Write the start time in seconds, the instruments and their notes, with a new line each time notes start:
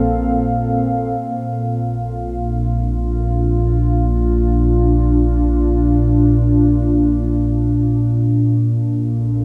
Already playing: sub bass A#1, ambient pad A#2 A#3 C4 A4 F5
1.20 sub bass A#1
1.40 ambient pad F4
2.06 ambient pad D4
8.56 sub bass A#1, ambient pad A#2
9.01 ambient pad A4
9.23 ambient pad C4